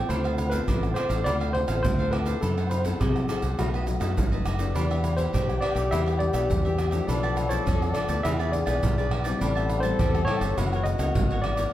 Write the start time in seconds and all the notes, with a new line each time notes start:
Already playing: C4 F4 A4
0.09 D2 D3 D4 A4 C5 F5, pandeiro, low agogo, shaker, surdo
0.24 A4 C5 F5, pandeiro, tamborim, shaker
0.38 muted cavaquinho stroke, pandeiro, tamborim, low agogo, shaker
0.50 C4 F4 A4 B4 C5 F5, pandeiro, shaker, surdo
0.67 A1 A2 D4 A4 C5 F5, pandeiro, high agogo, shaker, surdo
0.83 pandeiro, tamborim, shaker
0.94 C4 D4 F4 A4 C5 F5, pandeiro, tamborim, high agogo, shaker
1.09 A1 A4 C5 F5, pandeiro, shaker, surdo
1.24 D2 D3 C4 D4 F4 A4 C5 D5 F5, pandeiro, tamborim, low agogo, shaker, surdo
1.40 A4 C5 F5, pandeiro, tamborim, shaker
1.53 C4 F4 A4 C5, muted cavaquinho stroke, pandeiro, tamborim, surdo
1.68 A1 A4 C5 F5, pandeiro, tamborim, shaker, surdo
1.83 D2 A2 C5, pandeiro, shaker, surdo
1.99 C4 F4 A4 C5 F5, pandeiro, shaker, surdo
2.11 D4 A4 B4 C5 F5, pandeiro, tamborim, high agogo
2.26 C4 E4 A4 C5 F5, pandeiro, shaker
2.41 F#2 F#3 E4 A4 C5 F#5, pandeiro, low agogo, shaker, surdo
2.58 A4 C5 F#5, pandeiro, tamborim, shaker
2.70 C5, muted cavaquinho stroke, pandeiro, tamborim, low agogo, shaker
2.84 C4 E4 A4 C5 F#5, pandeiro, shaker, surdo
3.00 C3 F#3 E4 G#4 A4 C5 F#5, pandeiro, high agogo, shaker, surdo
3.16 pandeiro, tamborim, shaker
3.29 C4 E4 A4 C5 F#5, pandeiro, tamborim, high agogo, shaker
3.42 C2 A4 C5 F#5, pandeiro, shaker, surdo
3.59 B1 B2 F#3 A3 D#4 F#4 A4 B4 D#5, pandeiro, tamborim, low agogo, shaker, surdo
3.74 A4 B4 D#5, pandeiro, tamborim, shaker
3.87 F#3 A3 D#4, muted cavaquinho stroke, pandeiro, tamborim, shaker, surdo
4.00 F#2 A4 B4 D#5, pandeiro, tamborim, shaker, surdo
4.17 G#1, pandeiro, shaker, surdo
4.32 F#3 A3 D#4 A4 B4 D#5, pandeiro, shaker, surdo
4.45 F#1 D#4 A4 B4 D#5, pandeiro, tamborim, high agogo, shaker
4.59 B3 D4 G4 A4 B4 D#5, pandeiro, shaker
4.75 E2 E3 D4 G4 B4 D5 E5, pandeiro, low agogo, shaker, surdo
4.91 G4 B4 E5, pandeiro, tamborim, shaker
5.04 muted cavaquinho stroke, pandeiro, tamborim, low agogo, shaker
5.17 D4 G4 B4 C5 E5, pandeiro, shaker, surdo
5.33 B1 B2 D4 G4 B4 E5, pandeiro, high agogo, shaker, surdo
5.49 pandeiro, tamborim, shaker
5.61 B3 D4 G4 B4 D5 E5, pandeiro, tamborim, high agogo
5.75 B1 G4 B4 E5, pandeiro, shaker, surdo
5.91 E2 E3 B3 D4 G4 B4 E5, pandeiro, tamborim, low agogo, shaker, surdo
6.06 G4 B4 E5, pandeiro, tamborim, shaker
6.19 B3 D4 G4 D5, muted cavaquinho stroke, pandeiro, tamborim, surdo
6.33 B1 G4 B4 E5, pandeiro, tamborim, shaker, surdo
6.50 E2 B2, pandeiro, shaker, surdo
6.65 B3 D4 G4 B4 E5, pandeiro, shaker
6.78 D4 G4 B4 E5, pandeiro, tamborim, high agogo, shaker
6.91 F3 A3 D4 G4 B4 E5, pandeiro, shaker
7.07 B1 B2 F4 A4 B4 D5, pandeiro, low agogo, shaker, surdo
7.23 A4 B4 D5, pandeiro, tamborim, shaker
7.36 muted cavaquinho stroke, pandeiro, tamborim, low agogo, shaker
7.49 F3 A3 D4 A4 B4 C#5 D5, pandeiro, shaker, surdo
7.66 F2 B2 F4 A4 B4 D5, pandeiro, high agogo, shaker, surdo
7.82 pandeiro, tamborim, shaker
7.94 F3 A3 D4 F4 A4 B4 D5, pandeiro, tamborim, high agogo, shaker
8.09 D2 A4 B4 D5, pandeiro, shaker, surdo
8.23 E2 E3 B3 D4 E4 G#4 B4 D5 E5, pandeiro, tamborim, low agogo, shaker, surdo
8.39 G#4 B4 D5, pandeiro, tamborim, shaker
8.52 B3 D4 G#4 D5, muted cavaquinho stroke, pandeiro, tamborim, shaker, surdo
8.66 B1 G#4 B4 D5, pandeiro, tamborim, shaker, surdo
8.83 B1 B2, pandeiro, shaker, surdo
8.98 B3 D4 G#4 B4 D5, pandeiro, shaker
9.11 E4 G#4 B4 D5, pandeiro, tamborim, high agogo
9.24 G3 C4 E4 G#4 B4 D5, pandeiro, shaker
9.39 A1 A2 G4 A4 C5 D5 E5 A5, pandeiro, low agogo, shaker, surdo
9.55 C5 E5 A5, pandeiro, tamborim, shaker
9.69 muted cavaquinho stroke, pandeiro, tamborim, low agogo, shaker
9.80 G3 C4 E4 C5 E5 A5, pandeiro, shaker, surdo
9.85 C5
9.99 E2 E3 G4 C5 E5 A5, pandeiro, high agogo, shaker, surdo
10.15 pandeiro, tamborim, shaker
10.25 G3 C4 G4 C5 C#5 E5, pandeiro, tamborim, high agogo
10.29 E4 A5
10.41 G1 C5 E5 A5, pandeiro, shaker, surdo
10.57 F#1 F#2 E3 A#3 C#4 E4 F#4 A#4 C#5 F#5, pandeiro, tamborim, low agogo, shaker, surdo
10.72 A#4 C#5 F#5, pandeiro, tamborim, shaker
10.83 D#5, muted cavaquinho stroke, pandeiro, tamborim, shaker, surdo
10.98 C#2 E3 A#3 C#4 A#4 C#5 F#5, pandeiro, tamborim, shaker, surdo
11.15 G#1 C#3, pandeiro, shaker, surdo
11.30 A#4 C#5 F#5, pandeiro, shaker, surdo
11.42 E3 A#3 C#4 E4 A#4 C#5 D5, pandeiro, tamborim, high agogo
11.46 F#5
11.57 A#4 C#5 F#5, pandeiro, shaker